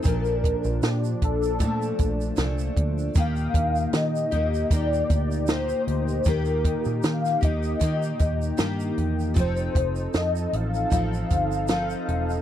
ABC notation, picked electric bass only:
X:1
M:4/4
L:1/16
Q:"Swing 16ths" 1/4=77
K:Eblyd
V:1 name="Picked electric bass" clef=bass
B,,,3 B,,, B,,2 B,,,2 B,,2 B,,,2 C,,2 D,,2 | E,,2 E,,2 E,2 E,,2 E,,2 D,,4 D,,2 | E,,3 B,, E,2 E,,2 E,2 E,,2 G,,2 _F,,2 | F,,,2 F,,,2 F,,2 A,,,2 A,,,2 G,,,4 _F,,,2 |]